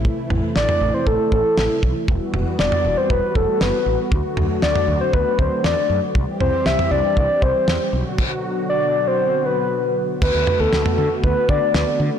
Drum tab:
CC |----------------|----------------|----------------|----------------|
SD |----o-------o---|----o-------o---|----o-------o---|----o-------o---|
T2 |--o--o----------|--o--o----------|--o--o----------|--o--o----------|
BD |o-------o-o---o-|o-------o-o-----|o-------o-o-----|o-------o-o-----|

CC |x---------------|x---------------|
SD |----------------|----o-------o---|
T2 |----------------|--o--o----------|
BD |o---------------|o-------o-o-----|